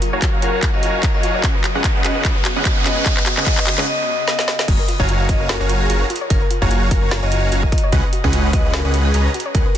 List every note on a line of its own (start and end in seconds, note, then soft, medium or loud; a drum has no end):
0.00 1.41 F#3 medium
0.00 0.09 F4 medium
0.00 1.41 A#4 medium
0.00 1.41 F5 medium
0.00 closed hi-hat medium
0.00 riser medium
0.13 0.41 F#1 medium
0.13 0.40 F#4 medium
0.13 0.19 C#5 medium
0.13 0.40 C#5 medium
0.13 0.40 F5 medium
0.13 0.40 G#5 medium
0.13 0.40 A#5 medium
0.22 0.29 F4 medium
0.22 kick loud
0.22 clap medium
0.22 closed hi-hat medium
0.33 0.42 F5 medium
0.42 0.72 F#1 medium
0.42 0.53 F4 medium
0.42 0.71 F#4 medium
0.42 0.58 A#4 medium
0.42 0.71 C#5 medium
0.42 0.71 F5 medium
0.42 0.71 G#5 medium
0.42 0.71 A#5 medium
0.42 closed hi-hat medium
0.53 0.57 A#4 medium
0.63 0.70 F4 medium
0.63 kick medium
0.63 clap medium
0.63 closed hi-hat medium
0.74 1.12 F#1 loud
0.74 1.12 F#4 loud
0.74 0.80 C#5 loud
0.74 1.12 C#5 medium
0.74 0.80 D#5 medium
0.74 1.12 F5 medium
0.74 1.12 G#5 medium
0.74 1.12 A#5 loud
0.83 0.94 F4 medium
0.83 0.90 D#5 medium
0.83 closed hi-hat medium
0.94 1.00 F5 medium
1.03 1.10 F4 medium
1.03 kick loud
1.03 clap medium
1.03 closed hi-hat medium
1.14 1.42 F#1 medium
1.14 1.42 F#4 medium
1.14 1.23 A#4 medium
1.14 1.42 C#5 medium
1.14 1.20 D#5 medium
1.14 1.42 F5 medium
1.14 1.42 G#5 medium
1.14 1.42 A#5 medium
1.23 1.31 F4 loud
1.23 1.31 D#5 medium
1.23 closed hi-hat medium
1.35 1.43 C#5 loud
1.44 1.52 C#2 medium
1.44 3.85 C#3 medium
1.44 3.85 B3 medium
1.44 1.54 C#4 medium
1.44 3.84 F#4 medium
1.44 1.51 F#4 medium
1.44 1.54 G#4 medium
1.44 1.54 B4 medium
1.44 1.54 D#5 medium
1.44 1.54 F#5 medium
1.44 kick loud
1.44 clap medium
1.44 closed hi-hat medium
1.55 1.61 B4 medium
1.64 1.71 F#4 medium
1.64 clap medium
1.64 closed hi-hat medium
1.75 2.03 C#2 medium
1.75 2.02 C#4 medium
1.75 2.02 G#4 medium
1.75 2.02 B4 medium
1.75 1.81 C#5 medium
1.75 2.02 D#5 medium
1.75 2.02 F#5 medium
1.84 1.91 F#4 medium
1.84 kick loud
1.84 clap medium
1.84 closed hi-hat medium
1.95 2.04 F#5 medium
2.04 2.23 C#2 loud
2.04 2.23 C#4 medium
2.04 2.15 F#4 medium
2.04 2.23 G#4 medium
2.04 2.23 B4 medium
2.04 2.20 D#5 medium
2.04 2.23 D#5 medium
2.04 2.23 F#5 medium
2.04 clap medium
2.04 closed hi-hat medium
2.16 2.19 B4 medium
2.25 2.33 C#2 medium
2.25 2.35 C#4 medium
2.25 2.32 F#4 medium
2.25 2.35 G#4 medium
2.25 2.35 B4 medium
2.25 2.35 D#5 medium
2.25 2.35 F#5 loud
2.25 kick medium
2.25 clap medium
2.25 closed hi-hat medium
2.36 2.42 B4 loud
2.45 2.52 F#4 medium
2.45 clap medium
2.45 closed hi-hat medium
2.56 2.84 C#2 loud
2.56 2.83 C#4 medium
2.56 2.83 G#4 medium
2.56 2.83 B4 medium
2.56 2.62 C#5 medium
2.56 2.83 D#5 medium
2.56 2.83 F#5 medium
2.65 2.73 F#4 medium
2.65 kick loud
2.65 clap medium
2.65 closed hi-hat medium
2.77 2.85 F#5 medium
2.86 3.04 C#2 loud
2.86 3.04 C#4 medium
2.86 2.96 F#4 medium
2.86 3.04 G#4 medium
2.86 3.04 B4 medium
2.86 3.01 D#5 medium
2.86 3.04 D#5 medium
2.86 3.04 F#5 medium
2.86 clap medium
2.86 closed hi-hat medium
2.97 3.00 B4 medium
3.06 3.14 C#2 medium
3.06 3.16 C#4 medium
3.06 3.13 F#4 medium
3.06 3.16 G#4 medium
3.06 3.16 B4 medium
3.06 3.22 D#5 loud
3.06 3.16 D#5 medium
3.06 3.16 F#5 loud
3.06 kick loud
3.06 clap medium
3.06 closed hi-hat medium
3.17 3.23 B4 loud
3.17 clap medium
3.26 3.33 F#4 medium
3.26 clap medium
3.26 closed hi-hat medium
3.37 3.45 C#2 medium
3.37 3.45 C#4 medium
3.37 3.45 G#4 medium
3.37 3.45 B4 medium
3.37 3.43 C#5 medium
3.37 3.45 D#5 medium
3.37 3.45 F#5 medium
3.37 clap medium
3.46 3.55 C#2 loud
3.46 3.57 C#4 medium
3.46 3.54 F#4 medium
3.46 3.57 G#4 medium
3.46 3.57 B4 medium
3.46 3.57 D#5 medium
3.46 3.62 D#5 medium
3.46 3.57 F#5 loud
3.46 kick loud
3.46 clap medium
3.46 closed hi-hat medium
3.58 3.63 B4 loud
3.58 clap medium
3.67 3.74 F#4 medium
3.67 clap loud
3.67 closed hi-hat medium
3.78 3.85 C#2 medium
3.78 3.86 C#4 medium
3.78 3.86 G#4 medium
3.78 3.86 B4 medium
3.78 3.84 C#5 medium
3.78 3.86 D#5 medium
3.78 3.86 F#5 medium
3.78 clap medium
3.87 4.03 D#5 loud
4.07 4.23 D#5 medium
4.28 4.43 D#5 medium
4.28 snare medium
4.39 snare medium
4.48 snare medium
4.59 snare medium
4.68 4.76 F#1 medium
4.68 4.75 F4 medium
4.68 4.79 F#4 medium
4.68 4.79 C#5 medium
4.68 4.79 F5 medium
4.68 4.79 G#5 medium
4.68 4.79 A#5 loud
4.68 kick loud
4.68 closed hi-hat medium
4.68 crash loud
4.79 4.85 A#4 loud
4.88 4.96 F4 medium
4.88 closed hi-hat medium
5.00 5.27 F#1 loud
5.00 5.27 F#4 medium
5.00 5.05 C#5 medium
5.00 5.27 C#5 medium
5.00 5.27 F5 medium
5.00 5.27 G#5 medium
5.00 5.27 A#5 medium
5.00 kick medium
5.09 5.16 F4 medium
5.09 closed hi-hat medium
5.20 5.28 F5 medium
5.29 5.58 F#1 loud
5.29 5.40 F4 medium
5.29 5.58 F#4 medium
5.29 5.58 C#5 medium
5.29 5.45 D#5 medium
5.29 5.58 F5 medium
5.29 5.58 G#5 medium
5.29 5.58 A#5 medium
5.29 kick loud
5.29 closed hi-hat medium
5.40 5.44 A#4 medium
5.49 5.56 F4 medium
5.49 5.65 A#4 medium
5.49 snare loud
5.49 closed hi-hat medium
5.60 5.88 F#1 loud
5.60 5.88 F#4 loud
5.60 5.66 C#5 loud
5.60 5.88 C#5 medium
5.60 5.88 F5 medium
5.60 5.88 G#5 medium
5.60 5.88 A#5 loud
5.69 5.80 F4 medium
5.69 closed hi-hat medium
5.81 5.95 G#4 medium
5.81 5.86 F5 medium
5.90 6.04 F#1 loud
5.90 5.97 F4 medium
5.90 6.06 F#4 loud
5.90 6.06 C#5 medium
5.90 6.06 F5 medium
5.90 6.06 G#5 medium
5.90 6.06 A#5 loud
5.90 closed hi-hat medium
6.01 6.10 A#4 medium
6.10 6.17 F4 loud
6.10 closed hi-hat medium
6.16 closed hi-hat medium
6.21 6.30 C#5 loud
6.30 6.39 F#1 medium
6.30 6.37 F4 medium
6.30 6.41 F#4 loud
6.30 6.46 A#4 loud
6.30 6.41 C#5 medium
6.30 6.41 F5 medium
6.30 6.41 G#5 medium
6.30 6.41 A#5 loud
6.30 kick loud
6.30 closed hi-hat medium
6.42 6.47 A#4 loud
6.51 6.58 F4 medium
6.51 closed hi-hat medium
6.62 6.89 F#1 loud
6.62 6.89 F#4 medium
6.62 6.68 C#5 medium
6.62 6.89 C#5 medium
6.62 6.89 F5 medium
6.62 6.89 G#5 medium
6.62 6.89 A#5 medium
6.62 kick medium
6.71 6.78 F4 medium
6.71 closed hi-hat medium
6.82 6.91 F5 medium
6.91 7.20 F#1 loud
6.91 7.02 F4 medium
6.91 7.20 F#4 medium
6.91 7.07 A#4 medium
6.91 7.20 C#5 medium
6.91 7.20 F5 medium
6.91 7.20 G#5 medium
6.91 7.20 A#5 medium
6.91 kick loud
6.91 closed hi-hat medium
7.02 7.06 A#4 medium
7.11 7.19 F4 medium
7.11 snare loud
7.11 closed hi-hat medium
7.22 7.50 F#1 loud
7.22 7.50 F#4 loud
7.22 7.28 C#5 loud
7.22 7.50 C#5 medium
7.22 7.28 D#5 medium
7.22 7.50 F5 medium
7.22 7.50 G#5 medium
7.22 7.50 A#5 loud
7.32 7.42 F4 medium
7.32 7.39 D#5 medium
7.32 closed hi-hat medium
7.43 7.49 F5 medium
7.52 7.66 F#1 medium
7.52 7.59 F4 medium
7.52 7.68 F#4 loud
7.52 7.68 C#5 medium
7.52 7.68 F5 medium
7.52 7.68 G#5 medium
7.52 7.68 A#5 loud
7.52 closed hi-hat medium
7.63 7.72 A#4 medium
7.63 7.69 D#5 medium
7.63 kick medium
7.72 7.79 F4 loud
7.72 7.79 D#5 medium
7.72 kick loud
7.72 closed hi-hat medium
7.78 closed hi-hat medium
7.84 7.92 C#5 loud
7.92 8.01 C#2 loud
7.92 8.03 C#4 medium
7.92 8.00 F#4 medium
7.92 8.03 G#4 medium
7.92 8.03 B4 medium
7.92 8.03 D#5 medium
7.92 8.03 F#5 loud
7.92 kick loud
7.92 closed hi-hat medium
8.04 8.09 B4 loud
8.13 8.20 F#4 medium
8.13 closed hi-hat medium
8.24 8.52 C#2 loud
8.24 8.51 C#4 medium
8.24 8.51 G#4 medium
8.24 8.51 B4 medium
8.24 8.30 C#5 medium
8.24 8.51 D#5 medium
8.24 8.51 F#5 medium
8.24 kick medium
8.33 8.40 F#4 medium
8.33 closed hi-hat medium
8.44 8.53 F#5 medium
8.53 8.83 C#2 loud
8.53 8.82 C#4 medium
8.53 8.64 F#4 medium
8.53 8.82 G#4 medium
8.53 8.82 B4 medium
8.53 8.82 D#5 medium
8.53 8.69 D#5 loud
8.53 8.82 F#5 medium
8.53 kick loud
8.53 closed hi-hat medium
8.65 8.68 B4 medium
8.74 8.81 F#4 medium
8.74 8.89 A#4 medium
8.74 snare loud
8.74 closed hi-hat medium
8.85 9.12 C#2 loud
8.85 9.12 C#4 loud
8.85 9.12 G#4 medium
8.85 9.12 B4 medium
8.85 8.91 C#5 loud
8.85 9.12 D#5 loud
8.85 9.12 F#5 loud
8.94 9.04 F#4 medium
8.94 closed hi-hat medium
9.05 9.20 G#4 loud
9.05 9.11 F#5 medium
9.14 9.28 C#2 loud
9.14 9.30 C#4 loud
9.14 9.21 F#4 medium
9.14 9.30 G#4 medium
9.14 9.30 B4 medium
9.14 9.30 D#5 medium
9.14 9.30 A#5 loud
9.14 closed hi-hat medium
9.25 9.34 B4 medium
9.34 9.42 F#4 loud
9.34 closed hi-hat soft
9.40 closed hi-hat medium
9.46 9.54 C#5 loud
9.55 9.63 C#2 medium
9.55 9.65 C#4 medium
9.55 9.62 F#4 medium
9.55 9.65 G#4 medium
9.55 9.70 A#4 medium
9.55 9.65 B4 medium
9.55 9.65 D#5 medium
9.55 9.65 F#5 loud
9.55 kick loud
9.55 closed hi-hat medium
9.66 9.72 B4 loud